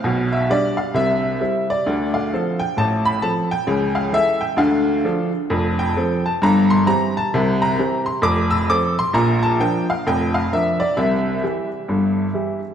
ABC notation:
X:1
M:4/4
L:1/8
Q:"Swing" 1/4=132
K:Ddor
V:1 name="Upright piano"
f e d f e3 d- | d f2 g a b a g- | g f e g f3 z | [K:Cmix] z g2 a b c' b a |
z b2 c' d' e' d' c' | b a g f g f e d | e6- e z |]
V:2 name="Upright piano" clef=bass
[B,,,B,,]2 [G,D]2 [C,,C,]2 [G,CE]2 | [D,,D,]2 [F,CA]2 [A,,,A,,]2 [F,CA]2 | [^C,,^C,]2 [E,EA]2 [D,,D,]2 [F,DA]2 | [K:Cmix] [F,,,F,,]2 [F,CA]2 [G,,,G,,]2 [E,CG]2 |
[C,,C,]2 [E,CG]2 [F,,,F,,]2 [F,CA]2 | [B,,,B,,]2 [F,DB]2 [F,,,F,,]2 [F,DB]2 | [C,,C,]2 [E,EG]2 [G,,,G,,]2 [E,EG]2 |]